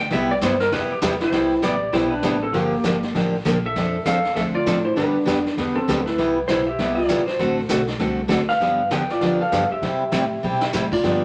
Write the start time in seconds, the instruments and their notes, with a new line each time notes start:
Already playing: upright bass D2
0.00 electric slide guitar G5
0.10 upright bass C2, steel-string acoustic guitar C3 G3 B3 E4 G4, electric slide guitar E5, brush sweep, kick, snare
0.31 electric slide guitar D5
0.41 upright bass G2, steel-string acoustic guitar C3 G3 B3 E4 G4, electric slide guitar C5, kick, snare, hi-hat pedal
0.60 electric slide guitar A#4, snare
0.72 upright bass F2, steel-string acoustic guitar C3 G3 B3 E4 G4, electric slide guitar B4, brush sweep, kick, snare
0.92 electric slide guitar G4
1.02 upright bass E2, steel-string acoustic guitar C3 G3 B3 E4 G4, kick, snare, hi-hat pedal
1.20 electric slide guitar E4 C5, snare
1.32 upright bass C2, steel-string acoustic guitar C3 G3 B3 E4 G4, brush sweep, kick, snare
1.62 upright bass A1, steel-string acoustic guitar C3 G3 B3 E4 G4, electric slide guitar G4 D5, kick, snare, hi-hat pedal
1.92 upright bass B1, steel-string acoustic guitar C3 G3 B3 E4 G4, electric slide guitar E4 C5, brush sweep, kick, snare
2.10 electric slide guitar D4 B4
2.23 upright bass A1, steel-string acoustic guitar C3 G3 B3 E4 G4, kick, snare, hi-hat pedal
2.42 electric slide guitar C4 A4
2.53 upright bass G1, steel-string acoustic guitar D3 F3 A#3 D4 G4, electric slide guitar A#3 G4, brush sweep, kick, snare
2.84 upright bass G#1, steel-string acoustic guitar D3 F3 A#3 D4 G4, kick, snare, hi-hat pedal
3.03 snare
3.15 upright bass A1, steel-string acoustic guitar D3 F3 A#3 D4 G4, brush sweep, kick, snare
3.45 upright bass A#1, steel-string acoustic guitar D3 F3 A#3 D4 G4, kick, snare, hi-hat pedal
3.66 electric slide guitar A4 E5
3.75 upright bass F2, steel-string acoustic guitar F3 C4 D4 A4, brush sweep, kick, snare
4.05 upright bass E2, steel-string acoustic guitar F3 C4 D4 A4, electric slide guitar A4 F5, kick, snare, hi-hat pedal
4.25 snare
4.36 upright bass D2, steel-string acoustic guitar F3 C4 D4 A4, electric slide guitar A4 E5, brush sweep, kick, snare
4.54 electric slide guitar F4 D5
4.66 upright bass A2, steel-string acoustic guitar F3 C4 D4 A4, kick, snare, hi-hat pedal
4.85 electric slide guitar E4 C5
4.96 upright bass G2, steel-string acoustic guitar D3 G3 B3 D4 G4, electric slide guitar D4 B4, brush sweep, kick, snare
5.25 upright bass F2, steel-string acoustic guitar D3 G3 B3 D4 G4, kick, snare, hi-hat pedal
5.46 snare
5.57 upright bass E2, steel-string acoustic guitar D3 G3 B3 D4 G4, brush sweep, kick, snare
5.75 electric slide guitar C4 A4
5.88 upright bass D2, steel-string acoustic guitar D3 G3 B3 D4 G4, kick, snare, hi-hat pedal
6.06 electric slide guitar E4 B4, snare
6.18 upright bass C2, steel-string acoustic guitar C3 G3 B3 E4 G4, brush sweep, kick, snare
6.48 upright bass B1, steel-string acoustic guitar C3 G3 B3 E4 G4, electric slide guitar E4 C5, kick, snare, hi-hat pedal
6.67 electric slide guitar G4 E5
6.78 upright bass C2, steel-string acoustic guitar C3 G3 B3 E4 G4, brush sweep, kick, snare
6.95 electric slide guitar F4 D5
7.09 upright bass G1, steel-string acoustic guitar C3 G3 B3 E4 G4, kick, snare, hi-hat pedal
7.26 electric slide guitar F#4 C5, muted upright bass stroke, snare
7.39 upright bass A1, steel-string acoustic guitar D3 A3 C4 F#4 A4, brush sweep, kick, snare
7.69 upright bass B1, steel-string acoustic guitar D3 A3 C4 F#4 A4, kick, snare, hi-hat pedal
7.87 snare
7.99 upright bass C2, steel-string acoustic guitar D3 A3 C4 F#4 A4, brush sweep, kick, snare
8.28 upright bass D2, steel-string acoustic guitar D3 A3 C4 F#4 A4, kick, snare, hi-hat pedal
8.49 electric slide guitar B4 F5, snare
8.60 upright bass G2, steel-string acoustic guitar D3 F3 B3 D4 G4, brush sweep, kick, snare
8.90 upright bass E2, steel-string acoustic guitar D3 F3 B3 D4 G4, electric slide guitar B4 G5, kick, snare, hi-hat pedal
9.10 electric slide guitar F4 D5, snare
9.21 upright bass F2, steel-string acoustic guitar D3 F3 B3 D4 G4, brush sweep, kick, snare
9.41 electric slide guitar A4 F5, muted upright bass stroke
9.52 upright bass G2, steel-string acoustic guitar D3 F3 B3 D4 G4, kick, snare, hi-hat pedal
9.71 electric slide guitar G4 E5, muted upright bass stroke
9.82 upright bass C3, steel-string acoustic guitar C3 G3 C4 E4 G4, brush sweep, kick, snare
10.12 upright bass A2, steel-string acoustic guitar C3 G3 C4 E4 G4, kick, snare, hi-hat pedal
10.43 upright bass B2, steel-string acoustic guitar C3 G3 C4 E4 G4
10.61 snare
10.73 upright bass A2, steel-string acoustic guitar C3 G3 C4 E4 G4, snare, hi-hat pedal
10.92 electric slide guitar F4 D5, kick, crash
11.03 upright bass G2, steel-string acoustic guitar D3 F3 B3 D4 G4, brush sweep, kick, snare